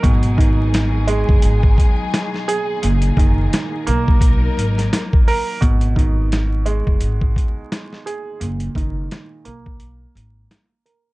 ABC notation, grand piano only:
X:1
M:4/4
L:1/8
Q:"Swing 16ths" 1/4=86
K:G#m
V:1 name="Grand piano" clef=bass
B,, D,2 G,4 G | A,, D,2 A,4 A | B,, D,2 G,4 G | A,, D,2 A,4 A |]